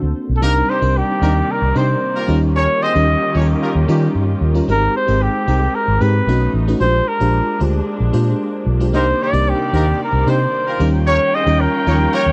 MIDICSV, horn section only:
0, 0, Header, 1, 2, 480
1, 0, Start_track
1, 0, Key_signature, -3, "minor"
1, 0, Tempo, 532387
1, 380, Time_signature, 4, 2, 24, 8
1, 11110, End_track
2, 0, Start_track
2, 0, Title_t, "Horn section"
2, 0, Program_c, 0, 61
2, 0, Note_on_c, 0, 57, 78
2, 0, Note_on_c, 0, 60, 77
2, 0, Note_on_c, 0, 66, 84
2, 0, Note_on_c, 0, 69, 85
2, 107, Note_off_c, 0, 57, 0
2, 107, Note_off_c, 0, 69, 0
2, 108, Note_off_c, 0, 60, 0
2, 108, Note_off_c, 0, 66, 0
2, 380, Note_on_c, 0, 67, 93
2, 383, Note_on_c, 0, 63, 98
2, 384, Note_on_c, 0, 58, 111
2, 384, Note_on_c, 0, 70, 121
2, 476, Note_off_c, 0, 67, 0
2, 478, Note_off_c, 0, 58, 0
2, 478, Note_off_c, 0, 63, 0
2, 478, Note_off_c, 0, 70, 0
2, 622, Note_on_c, 0, 67, 87
2, 624, Note_on_c, 0, 55, 68
2, 624, Note_on_c, 0, 63, 76
2, 717, Note_off_c, 0, 67, 0
2, 718, Note_off_c, 0, 55, 0
2, 718, Note_off_c, 0, 63, 0
2, 1095, Note_on_c, 0, 63, 83
2, 1097, Note_on_c, 0, 58, 85
2, 1097, Note_on_c, 0, 67, 80
2, 1097, Note_on_c, 0, 70, 92
2, 1193, Note_off_c, 0, 63, 0
2, 1194, Note_off_c, 0, 58, 0
2, 1194, Note_off_c, 0, 67, 0
2, 1194, Note_off_c, 0, 70, 0
2, 1587, Note_on_c, 0, 63, 82
2, 1588, Note_on_c, 0, 60, 78
2, 1588, Note_on_c, 0, 67, 74
2, 1588, Note_on_c, 0, 72, 85
2, 1680, Note_off_c, 0, 60, 0
2, 1680, Note_off_c, 0, 63, 0
2, 1680, Note_off_c, 0, 72, 0
2, 1681, Note_off_c, 0, 67, 0
2, 1947, Note_on_c, 0, 65, 102
2, 1949, Note_on_c, 0, 58, 98
2, 1949, Note_on_c, 0, 67, 90
2, 1949, Note_on_c, 0, 70, 107
2, 2136, Note_off_c, 0, 65, 0
2, 2137, Note_off_c, 0, 58, 0
2, 2137, Note_off_c, 0, 67, 0
2, 2137, Note_off_c, 0, 70, 0
2, 2301, Note_on_c, 0, 67, 86
2, 2302, Note_on_c, 0, 61, 92
2, 2302, Note_on_c, 0, 73, 100
2, 2303, Note_on_c, 0, 70, 100
2, 2396, Note_off_c, 0, 67, 0
2, 2397, Note_off_c, 0, 61, 0
2, 2397, Note_off_c, 0, 70, 0
2, 2397, Note_off_c, 0, 73, 0
2, 2541, Note_on_c, 0, 65, 79
2, 2542, Note_on_c, 0, 60, 94
2, 2542, Note_on_c, 0, 68, 82
2, 2542, Note_on_c, 0, 72, 102
2, 2636, Note_off_c, 0, 65, 0
2, 2636, Note_off_c, 0, 68, 0
2, 2637, Note_off_c, 0, 60, 0
2, 2637, Note_off_c, 0, 72, 0
2, 3023, Note_on_c, 0, 67, 80
2, 3024, Note_on_c, 0, 61, 86
2, 3024, Note_on_c, 0, 73, 94
2, 3027, Note_on_c, 0, 70, 72
2, 3117, Note_off_c, 0, 67, 0
2, 3118, Note_off_c, 0, 61, 0
2, 3118, Note_off_c, 0, 73, 0
2, 3120, Note_off_c, 0, 70, 0
2, 3267, Note_on_c, 0, 65, 94
2, 3268, Note_on_c, 0, 67, 100
2, 3269, Note_on_c, 0, 58, 93
2, 3269, Note_on_c, 0, 70, 101
2, 3360, Note_off_c, 0, 65, 0
2, 3360, Note_off_c, 0, 67, 0
2, 3361, Note_off_c, 0, 58, 0
2, 3361, Note_off_c, 0, 70, 0
2, 3505, Note_on_c, 0, 55, 81
2, 3505, Note_on_c, 0, 67, 89
2, 3507, Note_on_c, 0, 61, 81
2, 3508, Note_on_c, 0, 58, 82
2, 3694, Note_off_c, 0, 55, 0
2, 3694, Note_off_c, 0, 67, 0
2, 3695, Note_off_c, 0, 61, 0
2, 3696, Note_off_c, 0, 58, 0
2, 8062, Note_on_c, 0, 67, 106
2, 8063, Note_on_c, 0, 63, 109
2, 8064, Note_on_c, 0, 58, 96
2, 8064, Note_on_c, 0, 70, 104
2, 8157, Note_off_c, 0, 67, 0
2, 8158, Note_off_c, 0, 58, 0
2, 8158, Note_off_c, 0, 63, 0
2, 8158, Note_off_c, 0, 70, 0
2, 8305, Note_on_c, 0, 67, 86
2, 8306, Note_on_c, 0, 63, 69
2, 8307, Note_on_c, 0, 55, 73
2, 8399, Note_off_c, 0, 67, 0
2, 8400, Note_off_c, 0, 55, 0
2, 8400, Note_off_c, 0, 63, 0
2, 8788, Note_on_c, 0, 58, 91
2, 8788, Note_on_c, 0, 70, 98
2, 8792, Note_on_c, 0, 63, 85
2, 8792, Note_on_c, 0, 67, 86
2, 8881, Note_off_c, 0, 58, 0
2, 8881, Note_off_c, 0, 70, 0
2, 8883, Note_off_c, 0, 63, 0
2, 8883, Note_off_c, 0, 67, 0
2, 9265, Note_on_c, 0, 63, 78
2, 9265, Note_on_c, 0, 67, 78
2, 9266, Note_on_c, 0, 60, 81
2, 9266, Note_on_c, 0, 72, 88
2, 9359, Note_off_c, 0, 63, 0
2, 9359, Note_off_c, 0, 67, 0
2, 9360, Note_off_c, 0, 60, 0
2, 9360, Note_off_c, 0, 72, 0
2, 9620, Note_on_c, 0, 58, 96
2, 9620, Note_on_c, 0, 70, 104
2, 9622, Note_on_c, 0, 67, 94
2, 9623, Note_on_c, 0, 65, 97
2, 9812, Note_off_c, 0, 58, 0
2, 9812, Note_off_c, 0, 70, 0
2, 9813, Note_off_c, 0, 67, 0
2, 9814, Note_off_c, 0, 65, 0
2, 9978, Note_on_c, 0, 70, 93
2, 9981, Note_on_c, 0, 61, 105
2, 9981, Note_on_c, 0, 67, 93
2, 9981, Note_on_c, 0, 73, 114
2, 10075, Note_off_c, 0, 70, 0
2, 10077, Note_off_c, 0, 61, 0
2, 10077, Note_off_c, 0, 67, 0
2, 10077, Note_off_c, 0, 73, 0
2, 10222, Note_on_c, 0, 68, 93
2, 10225, Note_on_c, 0, 60, 79
2, 10225, Note_on_c, 0, 65, 77
2, 10225, Note_on_c, 0, 72, 86
2, 10317, Note_off_c, 0, 68, 0
2, 10319, Note_off_c, 0, 60, 0
2, 10319, Note_off_c, 0, 65, 0
2, 10319, Note_off_c, 0, 72, 0
2, 10704, Note_on_c, 0, 61, 83
2, 10704, Note_on_c, 0, 70, 87
2, 10704, Note_on_c, 0, 73, 90
2, 10705, Note_on_c, 0, 67, 74
2, 10798, Note_off_c, 0, 70, 0
2, 10799, Note_off_c, 0, 61, 0
2, 10799, Note_off_c, 0, 67, 0
2, 10799, Note_off_c, 0, 73, 0
2, 10941, Note_on_c, 0, 58, 108
2, 10941, Note_on_c, 0, 65, 94
2, 10941, Note_on_c, 0, 70, 117
2, 10945, Note_on_c, 0, 67, 101
2, 11037, Note_off_c, 0, 58, 0
2, 11037, Note_off_c, 0, 65, 0
2, 11037, Note_off_c, 0, 70, 0
2, 11039, Note_off_c, 0, 67, 0
2, 11110, End_track
0, 0, End_of_file